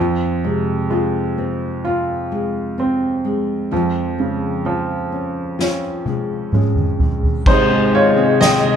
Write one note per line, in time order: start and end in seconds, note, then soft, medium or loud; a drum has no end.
0.00 3.68 F2 medium
0.00 3.72 F2 medium
0.00 1.37 C4 medium
0.00 0.90 F4 medium
0.44 2.27 C3 soft
0.44 2.31 G#3 medium
0.90 2.74 G#3 medium
0.90 1.84 F4 medium
1.38 2.77 C4 medium
1.85 3.68 F4 medium
1.85 3.71 F4 medium
2.32 3.24 G#3 medium
2.78 3.81 C4 soft
2.78 3.70 C4 medium
3.25 4.18 G#3 medium
3.71 7.43 F2 medium
3.71 7.46 F3 medium
3.71 4.64 F4 medium
4.19 6.02 C#3 soft
4.19 6.05 G#3 medium
4.65 6.49 F3 medium
4.65 5.58 F4 medium
5.12 6.52 C#4 medium
5.59 7.43 C#4 soft
5.59 7.56 F4 medium
5.59 snare soft
6.05 7.00 G#3 soft
6.05 high tom medium
6.52 7.44 G#3 soft
6.52 7.56 C#4 soft
6.52 mid tom medium
6.75 mid tom medium
6.99 7.47 G#3 medium
6.99 floor tom medium
7.23 floor tom medium
7.45 8.76 G#2 medium
7.45 8.76 C3 medium
7.45 8.76 D#3 medium
7.45 8.76 G#3 medium
7.45 7.91 D#4 medium
7.45 8.76 G#4 medium
7.45 7.95 C5 medium
7.45 8.76 D#5 medium
7.45 8.76 G5 medium
7.45 kick loud
7.45 crash medium
7.71 8.41 D#4 medium
7.93 8.38 F4 medium
7.93 8.42 C#5 medium
7.93 ride medium
8.17 8.62 C4 medium
8.41 8.76 D#5 loud
8.41 8.76 G5 medium
8.41 snare loud
8.41 ride medium
8.63 8.76 C4 medium